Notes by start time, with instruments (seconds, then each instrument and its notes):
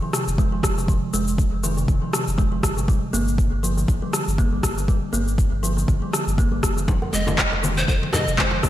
0.02 kalimba F3
0.13 kalimba C3, cross-stick, shaker
0.27 sub bass F1, shaker
0.38 kalimba G#3, kick, shaker
0.52 kalimba F3
0.63 sub bass F1, kick, cross-stick, shaker
0.78 kalimba C3, shaker
0.88 kalimba F3, kick, shaker
1.13 sub bass F1, kalimba G#3, shaker
1.28 shaker
1.38 kick, shaker
1.52 sub bass F1
1.63 kalimba D#3, shaker
1.77 kalimba C3, shaker
1.88 sub bass F1, kick, shaker
2.02 kalimba F3
2.13 kalimba C3, cross-stick, shaker
2.27 sub bass F1, shaker
2.38 kalimba G#3, kick, shaker
2.52 kalimba F3
2.63 sub bass G1, kick, cross-stick, shaker
2.77 kalimba C3, shaker
2.88 kalimba G3, kick, shaker
3.13 sub bass G1, kalimba A#3, shaker
3.28 shaker
3.38 kick, shaker
3.52 sub bass G1
3.63 kalimba F3, shaker
3.77 kalimba D3, shaker
3.88 sub bass G1, kick, shaker
4.02 kalimba G3
4.13 kalimba D3, cross-stick, shaker
4.27 sub bass G1, shaker
4.38 kalimba A#3, kick, shaker
4.53 kalimba G3
4.63 sub bass G1, kick, cross-stick, shaker
4.77 kalimba D3, shaker
4.88 kalimba G3, kick, shaker
5.13 sub bass G1, kalimba A#3, shaker
5.28 shaker
5.38 kick, shaker
5.52 sub bass G1
5.63 kalimba F3, shaker
5.77 kalimba D3, shaker
5.88 sub bass G1, kick, shaker
6.02 kalimba G3
6.13 kalimba D3, cross-stick, shaker
6.27 sub bass G1, shaker
6.38 kalimba A#3, kick, shaker
6.52 kalimba G3
6.63 sub bass F1, kick, cross-stick, shaker
6.77 kalimba D3, shaker
6.88 kalimba F3, kick, muted conga, low conga, shaker
7.02 djembe tone
7.13 sub bass F1, kalimba G#3, pan flute D#5, shaker
7.27 muted conga, djembe tone, high conga, shaker
7.38 kick, clap, shaker
7.52 sub bass F1, muted conga, djembe tone
7.63 kalimba D#3, high conga, shaker
7.77 kalimba C3, pan flute C5, muted conga, shaker
7.88 sub bass F1, pan flute C5, kick, djembe tone, shaker
8.02 kalimba F3, muted conga
8.13 kalimba C3, pan flute D#5, cross-stick, djembe slap, djembe tone, low conga, shaker
8.27 sub bass F1, shaker
8.38 kalimba G#3, pan flute C5, kick, clap, muted conga, djembe tone, high conga, shaker
8.51 kalimba F3, djembe slap
8.63 sub bass F1, kick, cross-stick, muted conga, high conga, shaker